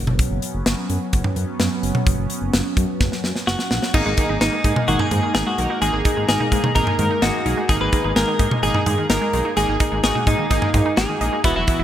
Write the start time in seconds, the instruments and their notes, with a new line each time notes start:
Already playing: analog synth bass F#1, analog synth pad F#3 B3 C#4
0.07 mid tom
0.19 kick, closed hi-hat
0.31 analog synth bass F#1
0.42 closed hi-hat
0.54 analog synth bass F#1
0.66 analog synth bass F#1, snare, closed hi-hat
0.90 analog synth bass F#2, closed hi-hat
1.13 analog synth bass F#1, kick, closed hi-hat
1.24 mid tom
1.36 analog synth bass F#2, closed hi-hat
1.60 analog synth bass F#2, snare, closed hi-hat
1.83 analog synth bass F#1, closed hi-hat
1.95 mid tom
2.07 analog synth bass F#1, kick, closed hi-hat
2.18 analog synth bass F#1
2.30 closed hi-hat
2.42 analog synth bass F#1
2.53 analog synth bass F#1, snare, closed hi-hat
2.77 analog synth bass F#2, kick, closed hi-hat
3.00 analog synth bass F#1, kick, snare
3.12 snare
3.24 analog synth bass F#2, snare
3.36 snare
3.47 analog synth bass F#1, clean electric guitar F#4, snare
3.59 snare
3.71 analog synth bass A#1, snare
3.82 snare
3.94 analog synth bass G#1, analog synth pad G#3 D#4 A#5, analog polysynth A#3 D#4 G#4, clean electric guitar D#4, synth arpeggio sound D#4, kick, crash
4.06 analog synth bass G#1, synth arpeggio sound G#3, clean electric guitar D#4
4.17 synth arpeggio sound D#3, analog polysynth A#3 D#4 G#4, kick, closed hi-hat
4.29 analog synth bass G#1, synth arpeggio sound D#4
4.41 analog synth bass G#1, synth arpeggio sound G#3, analog polysynth A#3 D#4 G#4, clean electric guitar D#4, snare, closed hi-hat
4.53 synth arpeggio sound D#3
4.64 analog synth bass G#2, analog polysynth A#3 D#4 G#4, synth arpeggio sound D#4, kick, closed hi-hat
4.76 synth arpeggio sound G#3, mid tom
4.88 analog synth bass G#1, synth arpeggio sound D#3, analog polysynth A#3 D#4 G#4, clean electric guitar F#4, closed hi-hat
4.99 synth arpeggio sound D#4, clean electric guitar G#4, mid tom
5.11 analog synth bass G#2, synth arpeggio sound G#3, analog polysynth A#3 D#4 G#4, closed hi-hat, mid tom
5.23 synth arpeggio sound D#3
5.35 analog synth bass G#1, analog polysynth A#3 D#4 G#4, synth arpeggio sound D#4, clean electric guitar G#4, snare, closed hi-hat
5.46 synth arpeggio sound G#3, clean electric guitar F#4
5.58 analog synth bass B1, synth arpeggio sound D#3, analog polysynth A#3 D#4 A#4, closed hi-hat
5.70 synth arpeggio sound D#4
5.82 analog synth bass G#1, synth arpeggio sound G#3, analog polysynth A#3 D#4 G#4, clean electric guitar G#4, closed hi-hat
5.93 analog synth bass G#1, synth arpeggio sound D#3
6.05 analog polysynth A#3 D#4 G#4, synth arpeggio sound D#4, kick, closed hi-hat
6.17 analog synth bass G#1, synth arpeggio sound G#3
6.29 analog synth bass G#1, synth arpeggio sound D#3, analog polysynth A#3 D#4 A#4, clean electric guitar G#4, snare, closed hi-hat
6.40 synth arpeggio sound D#4, mid tom
6.52 analog synth bass G#2, synth arpeggio sound G#3, analog polysynth A#3 D#4 G#4, kick, closed hi-hat
6.64 synth arpeggio sound D#3, mid tom
6.75 analog synth bass G#1, analog polysynth A#3 D#4 G#4, synth arpeggio sound D#4, clean electric guitar A#4, kick, closed hi-hat
6.87 synth arpeggio sound G#3, mid tom
6.99 analog synth bass G#2, synth arpeggio sound D#3, analog polysynth A#3 D#4 A#4, closed hi-hat, mid tom
7.11 synth arpeggio sound D#4
7.22 analog synth bass G#1, synth arpeggio sound G#3, analog polysynth A#3 D#4 G#4, clean electric guitar F#4, snare, closed hi-hat
7.34 synth arpeggio sound D#3
7.46 analog synth bass B1, analog polysynth A#3 D#4 G#4, synth arpeggio sound D#4, closed hi-hat
7.57 synth arpeggio sound G#3
7.69 analog synth bass G#1, analog polysynth A#3 D#4 G#4, synth arpeggio sound D#4, clean electric guitar G#4, kick, closed hi-hat
7.81 analog synth bass G#1, synth arpeggio sound G#3, clean electric guitar B4
7.92 synth arpeggio sound D#3, analog polysynth A#3 D#4 G#4, kick, closed hi-hat
8.04 analog synth bass G#1, synth arpeggio sound D#4
8.16 analog synth bass G#1, synth arpeggio sound G#3, analog polysynth A#3 D#4 G#4, clean electric guitar A#4, snare, closed hi-hat
8.28 synth arpeggio sound D#3
8.39 analog synth bass G#2, analog polysynth A#3 D#4 G#4, synth arpeggio sound D#4, kick, closed hi-hat
8.51 synth arpeggio sound G#3, mid tom
8.63 analog synth bass G#1, synth arpeggio sound D#3, analog polysynth A#3 D#4 G#4, clean electric guitar G#4, closed hi-hat
8.74 synth arpeggio sound D#4, mid tom
8.86 analog synth bass G#2, synth arpeggio sound G#3, analog polysynth A#3 D#4 G#4, closed hi-hat, mid tom
8.98 synth arpeggio sound D#3
9.10 analog synth bass G#1, analog polysynth A#3 D#4 G#4, synth arpeggio sound D#4, clean electric guitar A#4, snare, closed hi-hat
9.21 synth arpeggio sound G#3
9.33 analog synth bass B1, synth arpeggio sound D#3, analog polysynth A#3 D#4 G#4, closed hi-hat
9.45 synth arpeggio sound D#4
9.57 analog synth bass G#1, synth arpeggio sound G#3, analog polysynth A#3 D#4 G#4, clean electric guitar G#4, closed hi-hat
9.68 analog synth bass G#1, synth arpeggio sound D#3
9.80 analog polysynth A#3 D#4 G#4, synth arpeggio sound D#4, kick, closed hi-hat
9.92 analog synth bass G#1, synth arpeggio sound G#3
10.03 analog synth bass G#1, synth arpeggio sound D#3, analog polysynth A#3 D#4 F#4, clean electric guitar G#4, snare, closed hi-hat
10.15 synth arpeggio sound D#4, mid tom
10.27 analog synth bass G#2, synth arpeggio sound G#3, analog polysynth A#3 D#4 G#4, clean electric guitar D#4, kick, closed hi-hat
10.39 synth arpeggio sound D#3
10.50 analog synth bass G#1, analog polysynth A#3 D#4 G#4, synth arpeggio sound D#4, kick, closed hi-hat
10.62 synth arpeggio sound G#3, mid tom
10.74 analog synth bass G#2, synth arpeggio sound D#3, analog polysynth A#3 D#4 G#4, kick, closed hi-hat, mid tom
10.86 synth arpeggio sound D#4
10.97 analog synth bass G#1, synth arpeggio sound G#3, analog polysynth A#3 D#4 G#4, clean electric guitar G#4, snare, closed hi-hat
11.09 synth arpeggio sound D#3
11.21 analog synth bass A#1, analog polysynth A#3 D#4 G#4, synth arpeggio sound D#4, closed hi-hat
11.32 synth arpeggio sound G#3
11.44 analog synth bass E1, analog synth pad E3 B3 F#4, analog polysynth B3 E4 F#4, synth arpeggio sound E4, clean electric guitar E4, kick, closed hi-hat
11.56 analog synth bass E1, synth arpeggio sound F#3, clean electric guitar E4
11.67 synth arpeggio sound E3, analog polysynth B3 E4 F#4, kick, closed hi-hat
11.79 analog synth bass E1, synth arpeggio sound E4